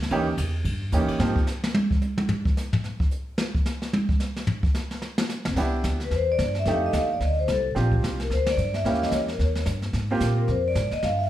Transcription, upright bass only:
0.10 D#2
0.37 E2
0.65 G2
0.92 D#2
1.09 muted upright bass stroke
1.19 G#2
5.47 F1
5.56 C2
5.84 D2
6.11 E2
6.38 G2
6.66 F2
6.93 D#2
7.20 D2
7.48 C2
7.75 A#1
8.03 C2
8.30 D2
8.57 G2
8.84 D#2
9.11 E2
9.39 D#2
9.66 G2
9.93 G#2
10.20 A#2
10.48 F2
10.75 G#2
10.91 muted upright bass stroke
11.03 G2

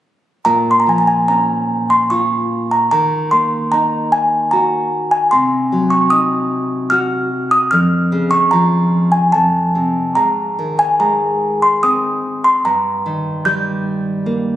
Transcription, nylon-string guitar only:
0.46 A#2
0.87 F3
1.29 C#4
2.11 F4
2.92 D#3
3.32 A#3
3.73 D#4
4.53 F#4
5.32 C3
5.72 F#3
6.12 D#4
6.92 F#4
7.72 F2
8.12 C#3
8.53 F3
9.34 F2
9.75 C3
10.16 G#2
10.59 D#3
11.00 G#3
11.83 C4
12.65 G2
13.06 D#3
13.46 G3
14.26 A#3

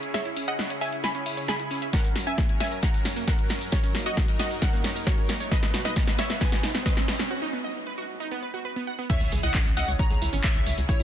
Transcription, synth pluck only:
0.14 C#5 E5
0.48 D#5 F#5
0.81 E5 G#5
1.04 G#5 B5
1.49 G#5 B5
1.93 A#4 F#5
2.27 E5 G#5
2.60 E5 G#5
2.83 F#5 A#5
3.28 A#4 F#5
3.72 A#4 C#5
4.06 F#4 D#5
4.40 F#4 D#5
4.62 A#4 F#5
5.07 A#4 C#5
5.52 B4 D#5
5.85 B4 D#5
6.19 C#5 E5
6.41 B4 G#5
6.86 B4 D#5
9.10 C#5 E5
9.43 D#5 F#5
9.77 D#5 F#5
9.99 C#5 A#5
10.44 C#5 E5
10.89 E4 C#5

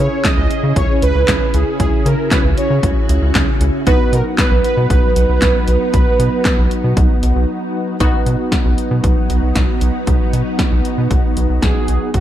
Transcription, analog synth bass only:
0.37 C#2
0.63 C#3
0.76 C#2
1.02 C#2
1.15 C#2
1.28 C#2
1.54 C#2
1.80 C#2
2.06 C#3
2.44 C#2
2.70 C#3
2.83 C#2
3.09 C#2
3.22 C#2
3.35 C#2
3.61 C#2
3.87 B1
4.13 B2
4.51 B1
4.77 B2
4.90 B1
5.16 B1
5.29 B1
5.42 B1
5.68 B1
5.94 B1
6.19 B2
6.58 B1
6.84 B2
6.97 B1
7.23 B1
7.36 B1
8.00 B1
8.26 B2
8.65 B1
8.91 B2
9.04 B1
9.30 B1
9.43 B1
9.56 B1
9.81 B1
10.07 B1
10.33 B2
10.72 B1
10.98 B2
11.11 B1
11.37 B1
11.50 B1
11.63 B1
11.89 B1
12.14 B1

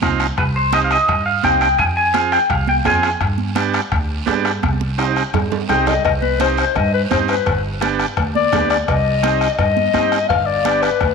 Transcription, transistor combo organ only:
0.02 C4 D#4 F4
0.72 C4 D#4 G4
1.43 C4 D#4 G4
2.14 C4 F4 G#4
2.85 C4 F4 G#4
3.55 B3 D4 G4
4.26 B3 D4 G4
4.98 C4 D#4 G4
5.69 C4 D#4 G4
6.40 C4 D#4 G4
7.10 C4 D#4 G4
7.81 B3 D4 G4
8.52 B3 D4 G4
9.23 C4 D#4 G4
9.94 C4 D#4 G4
10.65 B3 D4 G4

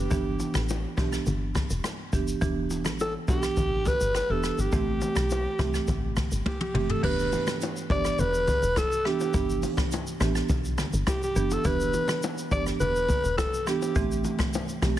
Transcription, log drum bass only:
0.11 G1
0.55 A1
0.98 B1
1.27 G1
1.71 E1
2.13 F#1
2.42 E1
2.86 A1
3.28 B1
3.57 A1
4.01 G1
4.30 E1
4.59 G1
4.73 A1
5.16 B1
5.59 C2
5.88 A1
6.32 G1
6.75 F#1
7.04 E1
7.90 G1
8.19 E1
8.63 E1
9.34 G1
10.21 A1
10.50 B1
10.94 G1
11.36 F#1
11.65 E1
12.51 G1
12.80 E1
13.24 E1
13.96 A1
14.82 B1

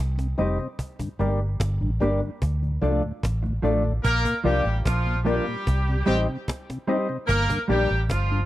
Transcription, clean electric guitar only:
0.39 G3 C4 D#4 G4
1.19 G3 A#3 D4 G4
2.02 G3 A#3 D4 G4
2.22 muted clean electric guitar stroke
2.82 F3 A3 D4 F4
3.43 muted clean electric guitar stroke
3.62 F3 A3 D4 F4
4.44 F3 A#3 D4 F4
5.25 F3 A#3 D4 F4
5.46 muted clean electric guitar stroke
6.06 G3 C4 D#4 G4
6.87 G3 C4 D#4 G4
7.68 G3 A#3 D4 G4

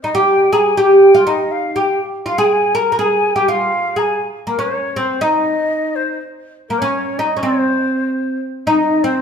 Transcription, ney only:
0.03 D#5
0.16 G5
0.53 A#5
0.58 G#5
0.77 G5
1.27 D#5
1.51 F5
1.76 G5
2.27 F5
2.38 G#5
2.44 G5
2.52 G#5
2.75 A#5
2.94 A#5
3.00 G#5
3.35 G5
3.48 F5
3.98 A#5
4.02 G#5
4.48 A#4
4.60 C#5
4.97 C5
5.22 D#5
5.95 C5
6.69 A#4
6.80 C#5
7.19 D#5
7.43 C5
8.67 D#5
9.03 C5

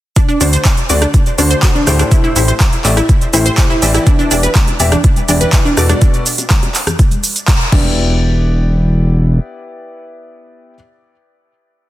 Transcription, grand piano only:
0.41 D3 A3 D4 F#4 C5
0.90 D3 A3 D4 F#4 D5
1.38 D3 A3 D4 F#4 C5
1.87 A2 A3 E4 G4 C5
2.36 A2 A3 E4 G4 C5
2.85 A2 A3 E4 G4 D5
3.33 A2 A3 E4 G4 C5
3.82 E3 B3 E4 G4 D5
4.31 E3 B3 E4 G4 D5
4.80 E3 B3 E4 G4 E5
5.29 E3 B3 E4 G4 D5
5.77 B2 B3 F#4 A4 D5
7.72 B3 E4 G4 D5

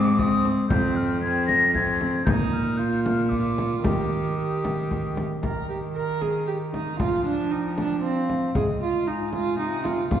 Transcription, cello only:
Already playing: G#2
0.70 F2
2.26 A#2
3.83 D#3
5.43 D#3
6.99 F3
8.55 G#2
9.58 C3
10.11 A#2

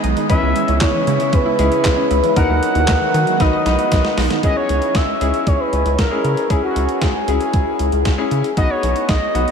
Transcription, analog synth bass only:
0.04 B1
0.30 C#2
0.42 C#2
0.68 C#2
0.81 C#2
1.07 C#3
1.33 C#2
1.59 C#2
1.85 C#2
2.11 C#2
2.36 D#2
2.49 D#2
2.75 D#2
2.88 D#2
3.14 D#3
3.40 B1
3.66 B1
3.92 B1
4.17 B1
4.43 C#2
4.69 C#2
4.95 C#2
5.21 C#2
5.47 C#2
5.73 C#2
5.86 C#2
5.99 C#2
6.24 C#3
6.50 C#2
6.76 C#2
7.02 C#2
7.28 C#2
7.54 C#2
7.80 C#2
7.93 C#2
8.05 C#2
8.31 C#3
8.57 B1
8.83 B1
9.09 B1
9.35 B1

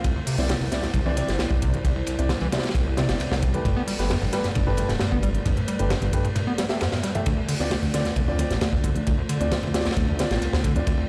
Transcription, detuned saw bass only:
0.04 C2
0.38 C2
0.61 C2
0.94 C2
1.28 G1
1.51 C2
1.85 C2
2.19 C2
2.41 C2
2.75 C2
3.09 G1
3.31 C2
3.65 G1
3.99 G1
4.22 G1
4.56 G1
4.89 D1
5.12 G1
5.46 G1
5.80 G1
6.02 G1
7.27 D2
7.60 D2
7.83 D2
8.16 D2
8.50 A1
8.73 D2
9.07 D2
9.41 D2
9.63 D2
9.97 D2
10.31 A1
10.53 D2
10.87 D2

